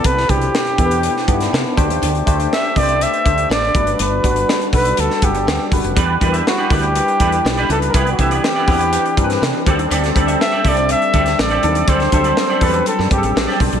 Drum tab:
HH |x-xx-xxxx-xx--xx|xxxx--oxxxxx--xx|x-xx-xoxx-xx--ox|x-xx--oxxxxx-xxx|
SD |-o--o----o-oo---|----o-------oo--|----o----o--o---|----o-------o---|
BD |o-o---o---o---o-|--o---o---o---o-|--o---o---o---o-|o-o---o---o-----|

HH |xxxx--oxxxxx--xx|xxxx--oxxxxx-xxx|xxxx--oxx-xx--ox|
SD |----o------oo---|-o--o------oo---|-o--o----o--oo--|
BD |o-o---o---o---o-|--o---o---o-----|o-o---o---o---o-|